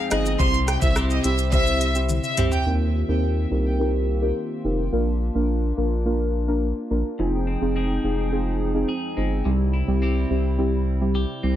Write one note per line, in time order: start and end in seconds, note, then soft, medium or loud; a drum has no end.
0.00 0.40 F2 medium
0.00 0.37 F3 medium
0.00 0.10 G#3 medium
0.00 0.11 C4 medium
0.00 2.62 C4 medium
0.00 0.37 D#4 medium
0.00 0.11 G#4 medium
0.00 0.37 G#4 medium
0.00 0.37 G5 medium
0.11 0.36 G1 loud
0.11 0.45 G#3 medium
0.11 0.30 C4 medium
0.11 0.96 C4 medium
0.11 0.30 D#4 medium
0.11 0.30 F4 medium
0.11 0.30 G#4 medium
0.11 0.40 G#4 medium
0.11 0.23 D#5 medium
0.11 cross-stick loud
0.11 closed hi-hat medium
0.11 shaker medium
0.26 shaker medium
0.39 0.77 C2 loud
0.39 2.66 C3 medium
0.39 0.58 C4 medium
0.39 0.58 E4 medium
0.39 2.64 E4 medium
0.39 2.64 G4 medium
0.39 0.58 G4 medium
0.39 0.97 G4 medium
0.39 0.58 C5 loud
0.39 0.51 C6 loud
0.39 kick loud
0.39 shaker medium
0.54 shaker medium
0.68 0.79 G5 medium
0.68 cross-stick medium
0.68 closed hi-hat medium
0.68 shaker medium
0.82 1.20 C2 loud
0.82 1.21 C4 medium
0.82 1.21 E4 medium
0.82 1.21 G4 medium
0.82 1.21 C5 medium
0.82 0.93 E5 medium
0.82 kick loud
0.82 shaker medium
0.96 1.52 C4 medium
0.96 2.37 E4 medium
0.96 2.38 G4 medium
0.96 cross-stick loud
0.96 shaker medium
1.10 1.22 D#5 medium
1.10 shaker medium
1.24 2.19 C2 medium
1.24 1.50 C4 medium
1.24 1.50 E4 medium
1.24 1.51 G4 medium
1.24 1.51 C5 medium
1.24 1.36 E5 medium
1.24 closed hi-hat medium
1.24 shaker medium
1.38 shaker medium
1.52 1.92 C4 loud
1.52 2.37 C4 medium
1.52 1.92 E4 medium
1.52 1.92 G4 medium
1.52 1.92 C5 loud
1.52 1.93 E5 loud
1.52 kick loud
1.52 shaker medium
1.67 shaker medium
1.81 closed hi-hat medium
1.81 shaker medium
1.95 2.14 C4 medium
1.95 2.14 E4 medium
1.95 2.14 G4 medium
1.95 2.14 C5 medium
1.95 shaker medium
2.09 high tom medium
2.09 shaker medium
2.23 2.35 E5 medium
2.23 shaker medium
2.37 2.50 C2 medium
2.37 2.56 C4 medium
2.37 3.22 C4 medium
2.37 2.56 E4 medium
2.37 2.72 E4 medium
2.37 2.56 G4 medium
2.37 3.22 G4 medium
2.37 2.57 C5 medium
2.37 closed hi-hat medium
2.37 mid tom loud
2.37 shaker medium
2.52 2.63 G5 medium
2.52 floor tom medium
2.52 shaker medium
2.66 3.03 D#2 loud
2.66 4.90 D#3 medium
2.66 7.15 A#3 medium
2.66 2.84 C4 medium
2.66 4.90 C4 medium
2.66 2.85 D#4 medium
2.66 7.15 F4 medium
2.66 4.90 G4 medium
2.66 2.85 G4 medium
2.66 2.85 A#4 loud
3.08 3.46 D#2 loud
3.08 3.47 C4 medium
3.08 3.47 D#4 medium
3.08 3.48 G4 medium
3.08 3.48 A#4 medium
3.51 4.32 C2 medium
3.51 3.77 C4 medium
3.51 3.77 D#4 medium
3.51 3.77 G4 medium
3.51 3.77 A#4 medium
3.79 4.18 C4 medium
3.79 4.18 D#4 medium
3.79 4.18 G4 medium
3.79 4.18 A#4 loud
4.21 4.40 C4 medium
4.21 4.40 D#4 medium
4.21 4.40 G4 medium
4.21 4.40 A#4 medium
4.64 4.89 F1 medium
4.64 4.83 C4 medium
4.64 4.83 D#4 medium
4.64 4.83 G4 medium
4.64 4.83 A#4 medium
4.92 5.30 A#1 loud
4.92 5.11 A#3 medium
4.92 7.16 D4 medium
4.92 5.11 D4 medium
4.92 5.11 F4 medium
4.92 5.11 A#4 loud
5.35 5.72 A#1 loud
5.35 5.74 A#3 medium
5.35 5.74 D4 medium
5.35 5.74 F4 medium
5.35 5.74 A#4 medium
5.77 6.72 A#1 medium
5.77 6.03 A#3 medium
5.77 6.03 D4 medium
5.77 6.03 F4 medium
5.77 6.03 A#4 medium
6.05 6.44 A#3 medium
6.05 6.45 D4 medium
6.05 6.45 F4 medium
6.05 6.45 A#4 loud
6.48 6.66 A#3 medium
6.48 6.67 D4 medium
6.48 6.67 F4 medium
6.48 6.67 A#4 medium
6.90 7.03 A#1 medium
6.90 7.09 A#3 medium
6.90 7.09 D4 medium
6.90 7.09 F4 medium
6.90 7.09 A#4 medium
7.19 7.56 F1 loud
7.19 9.45 F2 medium
7.19 9.43 F3 medium
7.19 7.37 C4 medium
7.19 11.56 C4 medium
7.19 7.37 D#4 medium
7.19 9.43 D#4 medium
7.19 7.37 F4 medium
7.19 9.43 G#4 medium
7.19 7.38 G#4 loud
7.19 9.43 G5 medium
7.47 7.76 C4 medium
7.61 7.99 F1 loud
7.61 8.00 C4 medium
7.61 8.00 D#4 medium
7.61 8.00 F4 medium
7.61 8.00 G#4 medium
7.75 9.16 G#3 medium
7.75 9.73 C4 medium
7.75 8.87 G#4 medium
8.04 8.85 F1 medium
8.04 8.30 C4 medium
8.04 8.30 D#4 medium
8.04 8.30 F4 medium
8.04 8.30 G#4 medium
8.32 8.71 C4 medium
8.32 8.71 D#4 medium
8.32 8.71 F4 medium
8.32 8.71 G#4 loud
8.74 8.93 C4 medium
8.74 8.93 D#4 medium
8.74 8.93 F4 medium
8.74 8.93 G#4 medium
8.89 9.51 G#4 medium
9.17 9.42 G1 medium
9.17 9.51 G#3 medium
9.17 9.35 C4 medium
9.17 9.35 D#4 medium
9.17 9.36 F4 medium
9.17 9.36 G#4 medium
9.45 9.83 C2 loud
9.45 11.56 C3 medium
9.45 9.64 G3 medium
9.45 11.56 G3 medium
9.45 9.64 C4 medium
9.45 11.56 E4 medium
9.45 9.64 E4 medium
9.45 9.64 G4 loud
9.73 10.01 E4 medium
9.87 10.25 C2 loud
9.87 10.27 G3 medium
9.87 10.27 C4 medium
9.87 10.27 E4 medium
9.87 10.27 G4 medium
10.02 11.43 C4 medium
10.02 11.56 E4 medium
10.02 11.15 G4 medium
10.30 11.25 C2 medium
10.30 10.56 G3 medium
10.30 10.56 C4 medium
10.30 10.56 E4 medium
10.30 10.56 G4 medium
10.58 10.97 G3 medium
10.58 10.97 C4 medium
10.58 10.98 E4 medium
10.58 10.98 G4 loud
11.01 11.19 G3 medium
11.01 11.19 C4 medium
11.01 11.20 E4 medium
11.01 11.20 G4 medium
11.15 11.56 G4 medium
11.43 11.56 C2 medium
11.43 11.56 G3 medium
11.43 11.56 C4 medium
11.43 11.56 E4 medium
11.43 11.56 G4 medium